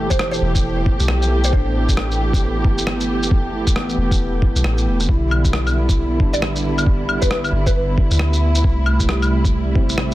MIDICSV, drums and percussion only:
0, 0, Header, 1, 2, 480
1, 0, Start_track
1, 0, Key_signature, 0, "minor"
1, 0, Tempo, 444444
1, 1655, Time_signature, 4, 2, 24, 8
1, 10951, End_track
2, 0, Start_track
2, 0, Title_t, "Drums"
2, 114, Note_on_c, 9, 82, 57
2, 115, Note_on_c, 9, 36, 59
2, 209, Note_on_c, 9, 37, 101
2, 222, Note_off_c, 9, 82, 0
2, 223, Note_off_c, 9, 36, 0
2, 317, Note_off_c, 9, 37, 0
2, 359, Note_on_c, 9, 82, 31
2, 467, Note_off_c, 9, 82, 0
2, 595, Note_on_c, 9, 36, 101
2, 596, Note_on_c, 9, 82, 56
2, 703, Note_off_c, 9, 36, 0
2, 704, Note_off_c, 9, 82, 0
2, 931, Note_on_c, 9, 36, 102
2, 1039, Note_off_c, 9, 36, 0
2, 1076, Note_on_c, 9, 82, 53
2, 1170, Note_on_c, 9, 37, 101
2, 1184, Note_off_c, 9, 82, 0
2, 1278, Note_off_c, 9, 37, 0
2, 1320, Note_on_c, 9, 82, 43
2, 1428, Note_off_c, 9, 82, 0
2, 1555, Note_on_c, 9, 82, 56
2, 1651, Note_on_c, 9, 36, 118
2, 1663, Note_off_c, 9, 82, 0
2, 1759, Note_off_c, 9, 36, 0
2, 2038, Note_on_c, 9, 36, 61
2, 2039, Note_on_c, 9, 82, 58
2, 2130, Note_on_c, 9, 37, 104
2, 2146, Note_off_c, 9, 36, 0
2, 2147, Note_off_c, 9, 82, 0
2, 2238, Note_off_c, 9, 37, 0
2, 2283, Note_on_c, 9, 82, 31
2, 2391, Note_off_c, 9, 82, 0
2, 2521, Note_on_c, 9, 36, 102
2, 2528, Note_on_c, 9, 82, 53
2, 2629, Note_off_c, 9, 36, 0
2, 2636, Note_off_c, 9, 82, 0
2, 2856, Note_on_c, 9, 36, 106
2, 2964, Note_off_c, 9, 36, 0
2, 3003, Note_on_c, 9, 82, 53
2, 3098, Note_on_c, 9, 37, 106
2, 3111, Note_off_c, 9, 82, 0
2, 3206, Note_off_c, 9, 37, 0
2, 3246, Note_on_c, 9, 82, 43
2, 3354, Note_off_c, 9, 82, 0
2, 3487, Note_on_c, 9, 82, 53
2, 3577, Note_on_c, 9, 36, 119
2, 3595, Note_off_c, 9, 82, 0
2, 3685, Note_off_c, 9, 36, 0
2, 3963, Note_on_c, 9, 36, 61
2, 3964, Note_on_c, 9, 82, 52
2, 4060, Note_on_c, 9, 37, 105
2, 4071, Note_off_c, 9, 36, 0
2, 4072, Note_off_c, 9, 82, 0
2, 4168, Note_off_c, 9, 37, 0
2, 4204, Note_on_c, 9, 82, 30
2, 4312, Note_off_c, 9, 82, 0
2, 4442, Note_on_c, 9, 36, 103
2, 4445, Note_on_c, 9, 82, 52
2, 4550, Note_off_c, 9, 36, 0
2, 4553, Note_off_c, 9, 82, 0
2, 4775, Note_on_c, 9, 36, 104
2, 4883, Note_off_c, 9, 36, 0
2, 4924, Note_on_c, 9, 82, 50
2, 5015, Note_on_c, 9, 37, 104
2, 5032, Note_off_c, 9, 82, 0
2, 5123, Note_off_c, 9, 37, 0
2, 5159, Note_on_c, 9, 82, 43
2, 5267, Note_off_c, 9, 82, 0
2, 5399, Note_on_c, 9, 82, 51
2, 5495, Note_on_c, 9, 36, 114
2, 5507, Note_off_c, 9, 82, 0
2, 5603, Note_off_c, 9, 36, 0
2, 5738, Note_on_c, 9, 75, 58
2, 5846, Note_off_c, 9, 75, 0
2, 5882, Note_on_c, 9, 36, 56
2, 5882, Note_on_c, 9, 82, 51
2, 5975, Note_on_c, 9, 37, 102
2, 5990, Note_off_c, 9, 36, 0
2, 5990, Note_off_c, 9, 82, 0
2, 6083, Note_off_c, 9, 37, 0
2, 6121, Note_on_c, 9, 75, 60
2, 6121, Note_on_c, 9, 82, 29
2, 6229, Note_off_c, 9, 75, 0
2, 6229, Note_off_c, 9, 82, 0
2, 6361, Note_on_c, 9, 36, 103
2, 6363, Note_on_c, 9, 82, 51
2, 6469, Note_off_c, 9, 36, 0
2, 6471, Note_off_c, 9, 82, 0
2, 6695, Note_on_c, 9, 36, 100
2, 6803, Note_off_c, 9, 36, 0
2, 6841, Note_on_c, 9, 82, 50
2, 6936, Note_on_c, 9, 37, 99
2, 6949, Note_off_c, 9, 82, 0
2, 7044, Note_off_c, 9, 37, 0
2, 7083, Note_on_c, 9, 82, 41
2, 7191, Note_off_c, 9, 82, 0
2, 7323, Note_on_c, 9, 75, 57
2, 7323, Note_on_c, 9, 82, 50
2, 7414, Note_on_c, 9, 36, 111
2, 7431, Note_off_c, 9, 75, 0
2, 7431, Note_off_c, 9, 82, 0
2, 7522, Note_off_c, 9, 36, 0
2, 7655, Note_on_c, 9, 75, 61
2, 7763, Note_off_c, 9, 75, 0
2, 7799, Note_on_c, 9, 82, 53
2, 7800, Note_on_c, 9, 36, 56
2, 7892, Note_on_c, 9, 37, 99
2, 7907, Note_off_c, 9, 82, 0
2, 7908, Note_off_c, 9, 36, 0
2, 8000, Note_off_c, 9, 37, 0
2, 8039, Note_on_c, 9, 75, 62
2, 8039, Note_on_c, 9, 82, 29
2, 8147, Note_off_c, 9, 75, 0
2, 8147, Note_off_c, 9, 82, 0
2, 8279, Note_on_c, 9, 36, 100
2, 8279, Note_on_c, 9, 82, 52
2, 8387, Note_off_c, 9, 36, 0
2, 8387, Note_off_c, 9, 82, 0
2, 8614, Note_on_c, 9, 36, 93
2, 8722, Note_off_c, 9, 36, 0
2, 8758, Note_on_c, 9, 82, 50
2, 8850, Note_on_c, 9, 37, 99
2, 8866, Note_off_c, 9, 82, 0
2, 8958, Note_off_c, 9, 37, 0
2, 8998, Note_on_c, 9, 82, 41
2, 9106, Note_off_c, 9, 82, 0
2, 9235, Note_on_c, 9, 82, 51
2, 9334, Note_on_c, 9, 36, 110
2, 9343, Note_off_c, 9, 82, 0
2, 9442, Note_off_c, 9, 36, 0
2, 9569, Note_on_c, 9, 75, 62
2, 9677, Note_off_c, 9, 75, 0
2, 9718, Note_on_c, 9, 82, 55
2, 9721, Note_on_c, 9, 36, 56
2, 9815, Note_on_c, 9, 37, 100
2, 9826, Note_off_c, 9, 82, 0
2, 9829, Note_off_c, 9, 36, 0
2, 9923, Note_off_c, 9, 37, 0
2, 9961, Note_on_c, 9, 75, 66
2, 9961, Note_on_c, 9, 82, 30
2, 10069, Note_off_c, 9, 75, 0
2, 10069, Note_off_c, 9, 82, 0
2, 10202, Note_on_c, 9, 36, 98
2, 10205, Note_on_c, 9, 82, 52
2, 10310, Note_off_c, 9, 36, 0
2, 10313, Note_off_c, 9, 82, 0
2, 10535, Note_on_c, 9, 36, 98
2, 10643, Note_off_c, 9, 36, 0
2, 10684, Note_on_c, 9, 82, 52
2, 10775, Note_on_c, 9, 37, 97
2, 10792, Note_off_c, 9, 82, 0
2, 10883, Note_off_c, 9, 37, 0
2, 10951, End_track
0, 0, End_of_file